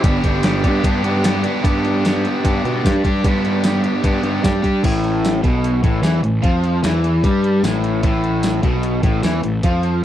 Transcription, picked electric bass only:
0.04 G1
0.24 G1
0.64 G2
0.84 G2
1.64 G2
2.45 G2
2.65 B2
2.85 G2
3.05 G2
3.25 G2
4.05 G2
4.24 G2
4.44 G2
4.64 G3
4.84 A1
5.44 B1
5.84 A1
6.04 E2
6.23 A1
6.44 F2
6.84 E2
7.24 G2
7.63 A1
8.03 A1
8.63 B1
9.03 A1
9.24 E2
9.44 A1
9.63 F2

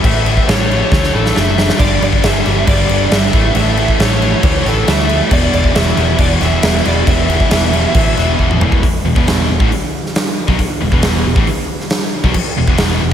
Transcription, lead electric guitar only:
0.05 E5
0.27 E5
0.48 C#5
0.92 C#5
1.15 A4
1.35 E5
1.79 D5
2.03 D5
2.25 E5
2.69 D5
3.14 E5
3.57 E5
4.01 C#5
4.44 C#5
4.69 A4
4.88 E5
5.33 D5
5.54 D5
5.76 E5
6.21 D5
6.42 E5
6.87 D5
7.08 E5

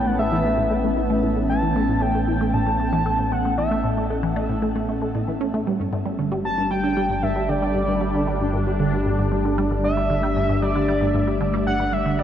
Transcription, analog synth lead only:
0.06 F#5
0.19 E5
1.49 A5
2.01 G5
2.53 A5
3.32 F#5
3.58 E5
6.45 A5
6.71 G5
7.23 E5
7.49 D5
9.84 E5
10.62 D5
11.67 F#5
11.93 E5
12.19 D5

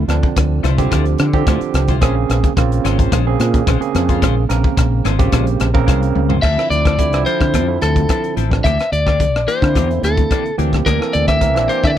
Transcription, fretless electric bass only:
0.08 D2
0.36 D2
0.63 C2
0.92 D2
1.19 D3
1.47 D2
1.61 muted fretless electric bass stroke
1.74 C2
2.02 A#1
2.29 A#1
2.57 A#1
2.84 G#1
3.12 A#1
3.39 A#2
3.67 A#1
3.94 F2
4.22 A#1
4.49 A#1
4.78 A#1
5.05 G#1
5.32 A#1
5.60 A#1
5.88 C2
6.15 C#2
6.43 D2
6.70 D2
7.13 C2
7.41 D3
7.54 F2
7.82 D2
8.37 A1
8.64 D2
8.92 D2
9.34 A#1
9.62 D3
9.75 E2
10.02 D2
10.58 D2
10.86 D2
11.14 D2
11.56 A#1
11.83 D3

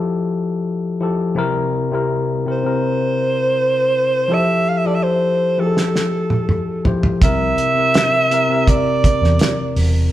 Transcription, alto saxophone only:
2.51 C5
4.34 E5
4.69 F5
4.77 E5
4.87 D5
4.95 E5
5.03 C5
5.60 A4
7.23 E5
8.69 D5

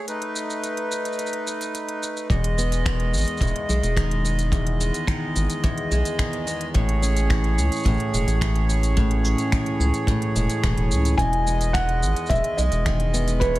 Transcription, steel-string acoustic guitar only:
2.30 E2
2.58 B3
2.86 D#3
3.41 E2
3.69 G#3
3.97 D#3
4.25 B3
4.53 E2
4.81 B3
5.08 D#3
5.64 E2
5.92 G#3
6.19 D#3
6.47 B3
6.74 A2
7.02 C#4
7.30 E3
7.86 A2
8.14 G#3
8.41 E3
8.69 C#4
8.97 A2
9.25 C#4
9.52 E3
10.08 A2
10.36 G#3
10.64 E3
10.91 C#4
11.19 E2
11.47 B3
11.75 D#3
12.31 E2
12.58 G#3
12.86 D#3
13.14 B3
13.41 E2

